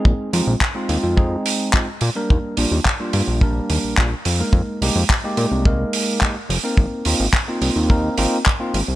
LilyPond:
<<
  \new Staff \with { instrumentName = "Tine electric piano" } { \time 4/4 \key bes \mixolydian \tempo 4 = 107 <aes c' ees' aes'>8 <aes c' ees' f'>16 r8 <aes c' ees' f'>8. <aes c' ees' aes'>4 <aes c' ees' f'>16 r8 <g bes d' bes'>16~ | <g bes d' bes'>8 <g bes d' f'>16 r8 <g bes d' f'>8. <g bes d' bes'>4 <g bes d' f'>16 r8 <aes bes ees' bes'>16~ | <aes bes ees' bes'>8 <aes bes ees' g'>16 r8 <aes bes ees' g'>8. <aes bes ees' bes'>4 <aes bes ees' g'>16 r8 <bes c' ees' bes'>16~ | <bes c' ees' bes'>8 <bes c' ees' f'>16 r8 <bes c' ees' f'>8. <bes c' ees' bes'>8 <bes c' ees' f'>16 r8 <bes c' ees' f'>16 r8 | }
  \new Staff \with { instrumentName = "Analog synth bass" } { \clef bass \time 4/4 \key bes \mixolydian bes,,16 r16 f,16 bes,,16 r8 ees,16 f,8 r4 r16 bes,16 r16 | ees,16 r16 bes,,16 ees,16 r8 g,16 bes,,8 r16 ees,16 bes,,16 bes,,16 r16 f,16 r16 | f,16 r16 c,16 f,16 r8 bes,16 c,8 r4 r16 f,,16 r16 | aes,,16 r16 ees,16 aes,,16 r8 c,16 ees,8 r16 aes,,16 r8. aes,,16 c,16 | }
  \new DrumStaff \with { instrumentName = "Drums" } \drummode { \time 4/4 bd8 hho8 <hc bd>8 hho8 bd8 hho8 <hc bd>8 hho8 | bd8 hho8 <hc bd>8 hho8 bd8 hho8 <hc bd>8 hho8 | bd8 hho8 <hc bd>8 hho8 bd8 hho8 <hc bd>8 hho8 | bd8 hho8 <hc bd>8 hho8 bd8 hho8 <hc bd>8 hho8 | }
>>